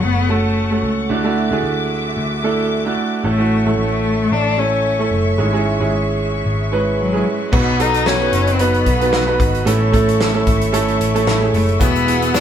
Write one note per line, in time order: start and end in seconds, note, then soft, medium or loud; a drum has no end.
0.00 0.79 F#1 medium
0.00 0.29 A3 medium
0.00 1.08 A3 medium
0.00 0.32 B3 medium
0.00 0.29 C#4 medium
0.00 0.29 F#4 medium
0.00 0.20 G#4 medium
0.00 0.30 A4 medium
0.00 1.08 F#5 medium
0.00 1.06 C#6 medium
0.29 0.65 A3 medium
0.29 0.84 A3 medium
0.29 0.66 C#4 medium
0.29 0.66 F#4 medium
0.29 0.66 A4 medium
0.71 1.05 A3 medium
0.71 1.05 C#4 medium
0.71 1.06 F#4 medium
0.71 1.06 A4 medium
0.83 1.08 C#2 medium
1.09 1.49 D2 medium
1.09 1.87 D3 medium
1.09 1.22 A3 medium
1.09 1.23 D4 medium
1.09 1.23 E4 medium
1.09 1.23 F#4 medium
1.09 3.23 F#4 medium
1.09 3.23 E5 medium
1.09 3.22 D6 medium
1.24 1.48 A3 medium
1.24 1.48 D4 medium
1.24 1.48 E4 medium
1.24 1.48 F#4 medium
1.51 1.63 D2 medium
1.51 2.33 A3 medium
1.51 2.33 D4 medium
1.51 2.33 E4 medium
1.51 2.33 G#4 medium
1.63 2.13 D2 medium
2.17 2.93 D2 medium
2.43 2.80 A3 medium
2.43 2.80 D4 medium
2.43 2.80 E4 medium
2.43 2.80 A4 medium
2.85 3.20 A3 medium
2.85 3.20 D4 medium
2.85 3.20 E4 medium
2.85 3.20 F#4 medium
3.23 3.63 A1 medium
3.23 4.01 A2 medium
3.23 3.37 A3 medium
3.23 3.75 A3 medium
3.23 3.37 C#4 medium
3.23 3.37 E4 medium
3.23 3.38 A4 medium
3.23 5.37 A4 medium
3.23 7.49 E5 medium
3.23 7.49 C#6 medium
3.38 3.62 A3 medium
3.38 3.62 C#4 medium
3.38 3.62 E4 medium
3.38 3.62 F#4 medium
3.65 3.77 A1 medium
3.65 4.47 A3 medium
3.65 4.47 C#4 medium
3.65 4.48 E4 medium
3.65 4.48 A4 medium
3.77 4.27 A1 medium
3.77 4.34 A3 medium
4.31 5.08 A1 medium
4.31 4.61 D4 medium
4.58 4.94 A3 medium
4.58 4.94 C#4 medium
4.58 5.12 C#4 medium
4.58 4.94 E4 medium
4.58 4.95 A4 medium
4.99 5.33 A3 medium
4.99 5.34 C#4 medium
4.99 5.34 E4 medium
4.99 5.34 A4 medium
5.11 5.36 F#1 medium
5.38 5.77 G#1 medium
5.38 6.15 G#2 medium
5.38 5.51 G#3 medium
5.38 5.52 C#4 medium
5.38 5.52 E4 medium
5.38 7.51 G#4 medium
5.38 5.52 G#4 medium
5.53 5.76 G#3 medium
5.53 5.76 C#4 medium
5.53 5.77 E4 medium
5.53 5.77 G#4 medium
5.80 5.91 G#1 medium
5.80 6.62 G#3 medium
5.80 6.62 C#4 medium
5.80 6.62 E4 medium
5.80 6.62 G#4 medium
5.92 6.42 G#1 medium
6.45 7.22 G#1 medium
6.72 7.08 G#3 medium
6.72 7.08 C#4 medium
6.72 7.08 E4 medium
6.72 7.09 B4 medium
7.00 7.28 F#3 medium
7.13 7.48 G#3 medium
7.13 7.48 C#4 medium
7.13 7.48 E4 medium
7.13 7.48 G#4 medium
7.27 7.55 G#3 medium
7.52 8.29 B1 medium
7.52 7.79 B2 medium
7.52 8.29 B2 medium
7.52 7.80 F#3 medium
7.52 7.76 B3 medium
7.52 7.80 B3 medium
7.52 7.82 B3 medium
7.52 7.76 D#4 medium
7.52 7.79 D#4 medium
7.52 9.64 F#4 medium
7.52 7.77 F#4 medium
7.52 7.78 F#4 medium
7.52 7.77 B4 medium
7.52 9.64 D#5 medium
7.52 9.64 B5 medium
7.52 kick loud
7.52 crash medium
7.79 8.15 B3 medium
7.79 8.15 D#4 medium
7.79 8.05 D#4 soft
7.79 8.09 D#4 loud
7.79 8.06 F#4 soft
7.79 8.16 F#4 medium
7.79 8.16 A4 medium
7.79 closed hi-hat medium
7.94 closed hi-hat medium
8.06 8.33 B2 medium
8.06 8.33 F#3 medium
8.06 8.33 B3 medium
8.06 8.62 C#4 medium
8.06 8.33 D#4 medium
8.06 8.32 F#4 medium
8.06 snare loud
8.21 8.55 B3 medium
8.21 8.55 D#4 medium
8.21 8.55 F#4 medium
8.21 8.56 B4 medium
8.33 8.83 F#1 medium
8.33 8.59 B3 soft
8.33 8.59 D#4 soft
8.33 8.60 F#4 medium
8.33 closed hi-hat medium
8.47 closed hi-hat soft
8.59 8.86 F#3 medium
8.59 8.95 B3 medium
8.59 8.87 B3 medium
8.59 9.41 B3 medium
8.59 8.96 D#4 medium
8.59 8.86 D#4 medium
8.59 8.96 F#4 medium
8.59 8.85 F#4 medium
8.59 8.96 B4 medium
8.59 closed hi-hat medium
8.74 closed hi-hat soft
8.86 9.36 B1 medium
8.86 9.12 B3 soft
8.86 9.13 D#4 medium
8.86 9.13 F#4 medium
8.86 kick medium
8.86 closed hi-hat medium
9.00 9.24 B3 medium
9.00 9.24 D#4 medium
9.00 9.24 F#4 medium
9.00 9.25 B4 medium
9.00 closed hi-hat soft
9.13 9.40 B2 medium
9.13 9.40 F#3 medium
9.13 9.40 B3 medium
9.13 9.39 D#4 medium
9.13 9.38 F#4 medium
9.13 snare loud
9.27 9.62 B3 medium
9.27 9.62 D#4 medium
9.27 9.62 F#4 medium
9.27 9.62 B4 medium
9.40 9.65 G#1 medium
9.40 9.67 B3 soft
9.40 9.67 D#4 soft
9.40 9.67 F#4 medium
9.40 kick loud
9.40 closed hi-hat medium
9.55 closed hi-hat soft
9.65 10.43 A1 medium
9.65 10.43 A2 medium
9.65 9.94 A2 medium
9.65 9.94 E3 medium
9.65 9.90 A3 medium
9.65 11.79 A3 medium
9.65 9.94 A3 medium
9.65 9.90 C#4 medium
9.65 9.93 C#4 medium
9.65 9.90 E4 medium
9.65 9.93 E4 medium
9.65 9.90 A4 medium
9.65 9.92 A4 medium
9.65 11.79 E5 medium
9.65 11.79 C#6 medium
9.65 closed hi-hat medium
9.92 10.29 A3 medium
9.92 10.19 A3 soft
9.92 10.29 C#4 medium
9.92 10.20 C#4 soft
9.92 10.29 E4 medium
9.92 10.20 E4 soft
9.92 10.20 A4 soft
9.92 10.29 A4 medium
9.92 kick medium
9.92 closed hi-hat medium
10.09 closed hi-hat medium
10.20 10.47 A2 medium
10.20 10.47 E3 medium
10.20 10.47 A3 medium
10.20 10.46 C#4 medium
10.20 10.46 E4 medium
10.20 10.45 A4 medium
10.20 snare loud
10.34 10.68 A3 medium
10.34 10.69 C#4 medium
10.34 10.69 E4 medium
10.34 10.69 A4 medium
10.46 10.97 G#1 medium
10.46 10.72 A3 soft
10.46 10.73 C#4 soft
10.46 10.73 E4 soft
10.46 10.73 A4 medium
10.46 kick loud
10.46 closed hi-hat medium
10.62 closed hi-hat medium
10.72 11.09 A3 medium
10.72 11.00 A3 medium
10.72 11.09 C#4 medium
10.72 11.00 C#4 medium
10.72 11.09 E4 medium
10.72 10.99 E4 medium
10.72 11.10 A4 loud
10.72 10.98 A4 medium
10.72 closed hi-hat medium
10.88 closed hi-hat soft
11.00 11.50 A1 medium
11.00 11.26 A3 soft
11.00 11.26 C#4 medium
11.00 11.27 E4 medium
11.00 11.27 A4 medium
11.00 closed hi-hat medium
11.14 11.38 A3 medium
11.14 11.38 C#4 medium
11.14 11.38 E4 medium
11.14 11.38 A4 loud
11.14 closed hi-hat soft
11.26 11.54 A2 medium
11.26 11.54 E3 medium
11.26 11.54 A3 medium
11.26 11.53 C#4 medium
11.26 11.53 E4 medium
11.26 11.52 A4 medium
11.26 snare loud
11.40 11.75 A3 medium
11.40 11.76 C#4 medium
11.40 11.76 E4 medium
11.40 11.76 G#4 medium
11.53 11.79 F#1 medium
11.53 11.67 A3 medium
11.53 11.80 A3 soft
11.53 11.80 C#4 soft
11.53 11.80 E4 medium
11.53 11.80 A4 soft
11.53 open hi-hat medium
11.69 closed hi-hat soft
11.79 12.40 E1 medium
11.79 12.07 E3 medium
11.79 12.40 E3 medium
11.79 12.07 G#3 medium
11.79 12.04 B3 medium
11.79 12.07 B3 medium
11.79 12.36 B3 loud
11.79 12.04 E4 medium
11.79 12.07 E4 medium
11.79 12.04 F#4 medium
11.79 12.05 F#4 medium
11.79 12.40 G#4 medium
11.79 12.04 G#4 medium
11.79 12.40 F#5 medium
11.79 12.40 E6 medium
11.79 kick loud
11.79 closed hi-hat medium
11.79 shaker medium
11.96 closed hi-hat soft
11.96 shaker soft
12.06 12.40 B3 medium
12.06 12.33 B3 soft
12.06 12.40 E4 medium
12.06 12.34 E4 medium
12.06 12.34 F#4 medium
12.06 12.40 F#4 medium
12.06 12.40 G#4 medium
12.06 closed hi-hat medium
12.22 closed hi-hat medium
12.22 shaker soft
12.34 12.40 E3 medium
12.34 12.40 G#3 medium
12.34 12.40 B3 medium
12.34 12.40 D4 loud
12.34 12.40 E4 medium
12.34 12.40 F#4 medium
12.34 snare loud
12.34 shaker medium